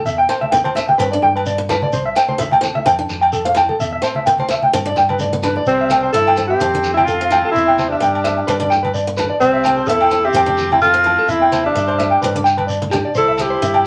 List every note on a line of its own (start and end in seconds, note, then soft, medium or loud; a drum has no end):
0.05 0.25 E2 loud
0.05 0.16 E5 medium
0.05 shekere medium
0.18 0.27 G5 medium
0.29 0.48 C4 medium
0.29 0.39 C5 medium
0.29 low agogo medium
0.29 shekere medium
0.41 0.50 E5 medium
0.41 high conga medium
0.52 0.71 B3 medium
0.52 0.62 G5 medium
0.52 low conga medium
0.52 shekere medium
0.64 0.73 C5 medium
0.64 high conga medium
0.64 low agogo medium
0.75 0.95 C4 medium
0.75 0.86 E5 medium
0.75 low conga medium
0.75 shekere medium
0.89 0.97 G5 medium
0.89 high conga medium
0.98 1.19 G2 medium
0.98 1.10 C4 medium
0.98 1.09 B4 medium
0.98 low agogo medium
0.98 shekere medium
1.12 1.31 D4 medium
1.12 1.20 D5 medium
1.22 1.83 G2 medium
1.22 1.33 G5 medium
1.22 low conga medium
1.36 1.44 B4 medium
1.36 low agogo medium
1.46 1.56 D5 medium
1.46 shekere medium
1.58 1.67 B3 medium
1.69 1.88 D4 medium
1.69 1.80 B4 medium
1.69 low conga medium
1.69 low agogo medium
1.69 shekere medium
1.82 1.91 D5 medium
1.82 high conga medium
1.92 2.12 C2 medium
1.92 2.03 C5 medium
1.92 shekere medium
2.06 2.14 E5 medium
2.16 2.35 C4 medium
2.16 2.26 G5 medium
2.16 low agogo medium
2.16 shekere medium
2.28 2.37 C5 medium
2.28 high conga medium
2.38 2.57 B3 medium
2.38 2.49 E5 medium
2.38 low conga medium
2.38 shekere medium
2.51 2.61 G5 medium
2.51 high conga medium
2.51 low agogo medium
2.61 2.80 C4 medium
2.61 low conga medium
2.61 shekere medium
2.75 2.84 E5 medium
2.75 high conga medium
2.86 3.06 F2 medium
2.86 2.96 C4 medium
2.86 2.96 G5 medium
2.86 low agogo medium
2.86 shekere medium
2.99 3.18 D4 medium
3.09 3.70 F2 medium
3.09 low conga medium
3.09 shekere medium
3.21 3.30 G5 medium
3.21 low agogo medium
3.33 3.43 A4 medium
3.33 shekere medium
3.45 3.54 C4 medium
3.45 3.54 F5 medium
3.55 3.74 E4 medium
3.55 3.67 G5 medium
3.55 low conga medium
3.55 low agogo medium
3.55 shekere medium
3.69 3.78 A4 medium
3.69 high conga medium
3.79 4.00 E2 medium
3.79 3.90 E5 medium
3.79 shekere medium
3.93 4.01 E5 medium
4.02 4.21 C4 medium
4.02 4.13 C5 medium
4.02 low agogo medium
4.02 shekere medium
4.15 4.24 E5 medium
4.15 high conga medium
4.26 4.46 B3 medium
4.26 4.36 G5 medium
4.26 shekere medium
4.38 4.48 C5 medium
4.38 high conga medium
4.38 low agogo medium
4.48 4.68 C4 medium
4.48 4.61 E5 medium
4.48 low conga medium
4.48 shekere medium
4.62 4.72 G5 medium
4.62 high conga medium
4.73 4.93 G2 medium
4.73 4.84 C4 medium
4.73 muted clean electric guitar stroke medium
4.73 low agogo medium
4.73 shekere medium
4.86 5.05 D4 medium
4.86 4.95 D5 medium
4.96 5.57 G2 medium
4.96 5.08 G5 medium
4.96 low conga medium
4.96 shekere medium
5.09 5.18 B4 medium
5.09 high conga medium
5.09 low agogo medium
5.19 5.31 D5 medium
5.19 high conga medium
5.19 shekere medium
5.32 5.41 B3 medium
5.32 high conga medium
5.43 5.62 D4 medium
5.43 5.54 B4 medium
5.43 low conga medium
5.43 low agogo medium
5.43 shekere medium
5.56 5.65 D5 medium
5.56 low conga medium
5.66 6.07 C2 loud
5.66 6.12 G3 medium
5.66 6.11 C4 medium
5.66 5.78 C5 medium
5.66 shekere medium
5.81 5.89 E5 medium
5.89 6.09 C4 medium
5.89 6.01 G5 medium
5.89 high conga medium
5.89 low agogo medium
5.89 shekere medium
6.03 6.12 C5 medium
6.13 6.54 G2 medium
6.13 6.33 B3 medium
6.13 6.48 E4 medium
6.13 6.47 A4 medium
6.13 6.24 E5 medium
6.13 shekere medium
6.27 6.36 G5 medium
6.27 low agogo medium
6.37 6.56 C4 medium
6.37 low conga medium
6.37 shekere medium
6.47 6.93 C4 medium
6.47 6.92 G4 medium
6.47 6.59 E5 medium
6.60 7.41 F2 medium
6.60 6.71 C4 medium
6.60 muted clean electric guitar stroke medium
6.60 low agogo medium
6.60 shekere medium
6.74 6.93 D4 medium
6.74 high conga medium
6.83 low conga medium
6.83 shekere medium
6.94 7.06 C4 medium
6.94 7.06 E4 medium
6.94 7.06 G5 medium
6.94 low agogo medium
6.98 high conga medium
7.05 7.52 C4 medium
7.05 7.51 F4 medium
7.05 7.18 A4 medium
7.05 shekere medium
7.21 7.29 C4 medium
7.21 7.29 F5 medium
7.31 7.49 E4 medium
7.31 7.42 G5 medium
7.31 low conga medium
7.31 low agogo medium
7.31 shekere medium
7.45 7.53 A4 medium
7.51 7.95 E2 medium
7.51 7.90 C4 medium
7.51 7.90 E4 medium
7.51 shekere medium
7.55 7.65 E5 medium
7.68 7.76 G5 medium
7.78 7.89 C5 medium
7.78 high conga medium
7.78 low agogo medium
7.78 shekere medium
7.89 8.83 G3 medium
7.89 8.83 D4 medium
7.89 8.00 E5 medium
8.00 8.41 G2 medium
8.00 8.19 B3 medium
8.00 8.12 G5 medium
8.00 shekere medium
8.15 low agogo medium
8.24 8.43 C4 medium
8.24 8.34 E5 medium
8.24 low conga medium
8.24 shekere medium
8.38 muted clean electric guitar stroke medium
8.47 9.29 G2 medium
8.47 8.58 C4 medium
8.47 8.58 B4 medium
8.47 low agogo medium
8.47 shekere medium
8.60 8.79 D4 medium
8.60 8.69 D5 medium
8.60 high conga medium
8.70 8.81 G5 medium
8.70 low conga medium
8.70 shekere medium
8.83 8.92 B4 medium
8.83 high conga medium
8.83 low agogo medium
8.94 9.05 D5 medium
8.94 shekere medium
9.07 9.16 B3 medium
9.17 9.37 D4 medium
9.17 9.28 B4 medium
9.17 low conga medium
9.17 low agogo medium
9.17 shekere medium
9.30 9.39 D5 medium
9.40 9.81 C2 medium
9.40 9.91 G3 medium
9.40 9.90 C4 medium
9.40 9.51 C5 medium
9.40 shekere medium
9.54 9.62 E5 medium
9.64 9.84 C4 medium
9.64 9.75 G5 medium
9.64 high conga medium
9.64 low agogo medium
9.64 shekere medium
9.77 9.86 C5 medium
9.87 10.28 E2 medium
9.87 10.08 B3 medium
9.87 10.27 E4 medium
9.87 10.26 A4 loud
9.87 9.98 E5 medium
9.87 shekere medium
10.01 10.10 G5 medium
10.01 low agogo medium
10.10 10.30 C4 medium
10.10 low conga medium
10.10 shekere medium
10.25 10.72 C4 medium
10.25 10.71 G4 loud
10.25 10.33 E5 medium
10.33 11.15 F2 loud
10.33 10.45 C4 medium
10.33 10.46 G5 medium
10.33 low agogo medium
10.33 shekere medium
10.46 10.66 D4 medium
10.46 high conga medium
10.58 low conga medium
10.58 shekere medium
10.71 10.81 C4 medium
10.71 10.81 E4 medium
10.71 10.80 G5 medium
10.71 high conga medium
10.71 low agogo medium
10.81 11.30 C4 medium
10.81 11.32 F4 medium
10.81 10.92 A4 medium
10.81 shekere medium
10.94 11.03 C4 medium
10.94 11.03 F5 medium
11.04 11.23 E4 medium
11.04 low conga medium
11.04 low agogo medium
11.19 11.27 A4 medium
11.28 11.69 E2 medium
11.28 11.65 C4 medium
11.28 11.65 E4 loud
11.28 11.39 E5 medium
11.28 shekere medium
11.42 11.50 G5 medium
11.52 11.71 C4 medium
11.52 11.62 C5 medium
11.52 high conga medium
11.52 low agogo medium
11.52 shekere medium
11.64 12.54 G3 medium
11.64 12.55 D4 medium
11.64 11.73 E5 medium
11.75 12.15 G2 medium
11.75 11.94 B3 medium
11.75 11.85 E5 medium
11.75 shekere medium
11.88 11.96 C5 medium
11.88 low agogo medium
11.98 12.18 C4 medium
11.98 12.09 E5 medium
11.98 low conga medium
11.98 shekere medium
12.11 12.20 G5 medium
12.22 13.02 G2 loud
12.22 12.33 C4 medium
12.22 12.32 B4 medium
12.22 low agogo medium
12.22 shekere medium
12.35 12.54 D4 medium
12.35 high conga medium
12.44 12.55 G5 medium
12.44 shekere medium
12.57 12.66 B4 medium
12.57 high conga medium
12.57 low agogo medium
12.67 12.78 D5 medium
12.67 shekere medium
12.82 12.90 B3 medium
12.82 high conga medium
12.91 13.12 D4 medium
12.91 13.02 G4 medium
12.91 high conga medium
12.91 low conga medium
12.91 low agogo medium
12.91 shekere medium
13.05 13.13 D5 medium
13.15 13.55 C2 medium
13.15 13.42 E4 medium
13.15 13.43 A4 medium
13.15 13.26 C5 medium
13.15 shekere medium
13.28 13.37 E5 medium
13.38 13.58 C4 medium
13.38 13.87 G4 medium
13.38 high conga medium
13.38 low agogo medium
13.38 shekere medium
13.42 13.87 E4 medium
13.50 13.59 C5 medium
13.61 13.87 G2 medium
13.61 13.81 B3 medium
13.61 13.73 E5 medium
13.61 shekere medium
13.74 13.84 G5 medium
13.74 low agogo medium